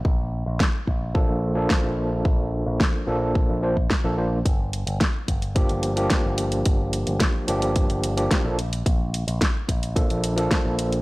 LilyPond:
<<
  \new Staff \with { instrumentName = "Tine electric piano" } { \time 4/4 \key bes \major \tempo 4 = 109 r2 <f bes d' a'>8. <f bes d' a'>4~ <f bes d' a'>16~ | <f bes d' a'>4. <f bes d' a'>4 <f bes d' c''>16 r8 <f bes d' a'>16 <f bes d' c''>16 r16 | r2 <f bes d' g'>8. <f bes d' g'>4~ <f bes d' g'>16~ | <f bes d' g'>4. <f bes d' g'>4~ <f bes d' g'>16 <f bes d' g'>8 <f bes d' a'>16 r8 |
r2 <f bes d' a'>8. <f bes d' a'>4~ <f bes d' a'>16 | }
  \new Staff \with { instrumentName = "Picked electric bass" } { \clef bass \time 4/4 \key bes \major bes,,8. bes,,16 r8 bes,,8. bes,,8. r16 bes,,8. | r8. bes,,16 r8 bes,,8. bes,,8. r16 bes,,8. | g,,8. g,,16 r8 g,,8. g,,8. r16 g,,8. | g,,8. g,,16 r8 g,,8. g,,8. r16 bes,,8. |
bes,,8. bes,,16 r8 bes,,8. bes,,8. r16 bes,,8. | }
  \new DrumStaff \with { instrumentName = "Drums" } \drummode { \time 4/4 bd4 <bd sn>8 bd8 bd4 <bd sn>4 | bd4 <bd sn>4 bd8. bd16 <bd sn>4 | <hh bd>8 hh16 hh16 <hh bd sn>8 <hh bd>16 hh16 <hh bd>16 hh16 hh16 hh16 <hh bd sn>8 hh16 hh16 | <hh bd>8 hh16 hh16 <hh bd sn>8 hh16 hh16 <hh bd>16 hh16 hh16 hh16 <hh bd sn>8 hh16 hh16 |
<hh bd>8 hh16 hh16 <hh bd sn>8 <hh bd>16 hh16 <hh bd>16 hh16 hh16 hh16 <hh bd sn>8 hh16 hh16 | }
>>